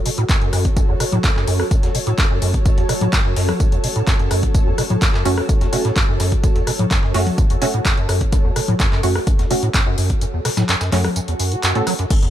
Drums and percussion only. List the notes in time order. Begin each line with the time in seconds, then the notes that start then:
0.06 open hi-hat, tambourine
0.18 closed hi-hat
0.29 kick, snare, clap, closed hi-hat, tambourine
0.42 closed hi-hat
0.53 cross-stick, open hi-hat, tambourine
0.65 kick, closed hi-hat
0.77 kick, closed hi-hat, tambourine
1.00 cross-stick, open hi-hat, tambourine
1.12 closed hi-hat, low conga
1.24 kick, snare, clap, closed hi-hat, tambourine
1.36 snare, clap
1.47 open hi-hat, tambourine
1.60 cross-stick
1.71 kick, closed hi-hat, tambourine
1.83 snare, closed hi-hat
1.95 open hi-hat, tambourine
2.07 closed hi-hat
2.18 kick, snare, clap, closed hi-hat, tambourine
2.42 open hi-hat, tambourine
2.54 kick, closed hi-hat
2.66 kick, closed hi-hat, tambourine
2.78 closed hi-hat
2.89 cross-stick, open hi-hat, tambourine
3.01 closed hi-hat, low conga
3.13 kick, snare, clap, closed hi-hat, tambourine
3.25 snare
3.36 open hi-hat
3.49 cross-stick, closed hi-hat, low conga
3.60 kick, closed hi-hat, tambourine
3.72 closed hi-hat
3.84 open hi-hat, tambourine
3.96 closed hi-hat
4.07 kick, snare, clap, closed hi-hat, tambourine
4.19 closed hi-hat
4.31 cross-stick, open hi-hat, tambourine
4.43 kick, closed hi-hat
4.54 kick, closed hi-hat, tambourine
4.78 cross-stick, open hi-hat, tambourine
4.90 closed hi-hat, low conga
5.02 kick, snare, clap, closed hi-hat, tambourine
5.14 snare, clap
5.25 open hi-hat, tambourine
5.38 cross-stick
5.49 kick, closed hi-hat, tambourine
5.61 snare, closed hi-hat
5.73 open hi-hat, tambourine
5.85 snare, closed hi-hat
5.96 kick, clap, closed hi-hat, tambourine
6.20 snare, open hi-hat, tambourine
6.32 kick, closed hi-hat
6.44 kick, closed hi-hat, tambourine
6.56 closed hi-hat
6.67 cross-stick, open hi-hat, tambourine
6.79 closed hi-hat, low conga
6.91 kick, snare, clap, closed hi-hat, tambourine
7.03 snare
7.14 open hi-hat
7.26 closed hi-hat, low conga
7.38 kick, closed hi-hat, tambourine
7.50 closed hi-hat
7.62 open hi-hat, tambourine
7.74 closed hi-hat
7.85 kick, snare, clap, closed hi-hat, tambourine
7.97 closed hi-hat
8.09 cross-stick, open hi-hat, tambourine
8.21 kick, closed hi-hat
8.32 kick, closed hi-hat, tambourine
8.56 cross-stick, open hi-hat, tambourine
8.68 closed hi-hat, low conga
8.80 kick, snare, clap, closed hi-hat, tambourine
8.92 snare, clap
9.03 open hi-hat, tambourine
9.15 cross-stick
9.27 kick, closed hi-hat, tambourine
9.39 snare, closed hi-hat
9.51 open hi-hat, tambourine
9.63 closed hi-hat
9.74 kick, snare, clap, closed hi-hat, tambourine
9.98 open hi-hat, tambourine
10.10 kick, closed hi-hat
10.21 closed hi-hat, tambourine
10.45 cross-stick, snare, open hi-hat, tambourine
10.57 snare, closed hi-hat, tambourine, low conga
10.69 snare, clap, closed hi-hat, tambourine
10.81 snare, tambourine
10.92 clap, open hi-hat, low conga
11.04 cross-stick, closed hi-hat, low conga
11.16 closed hi-hat, tambourine
11.28 closed hi-hat
11.40 open hi-hat, tambourine
11.52 closed hi-hat
11.63 snare, clap, closed hi-hat, tambourine
11.75 closed hi-hat
11.87 cross-stick, open hi-hat, tambourine
11.99 closed hi-hat
12.10 kick, closed hi-hat, crash, tambourine
12.23 closed hi-hat